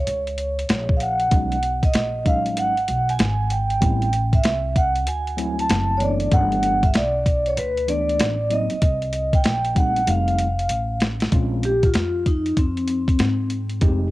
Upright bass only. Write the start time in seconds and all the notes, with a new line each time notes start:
0.07 C#2
0.69 A#1
1.32 B1
1.95 A#1
2.57 G#1
2.88 B1
3.19 G#1
3.82 A1
4.44 C2
5.07 D2
5.69 F#1
6.32 G1
6.94 B1
7.57 D2
8.20 A1
8.72 muted upright bass stroke
8.82 C2
9.45 A#1
10.08 F1
10.70 A1
11.32 A#1
11.95 F2
12.57 F2
13.20 G#2
13.82 F1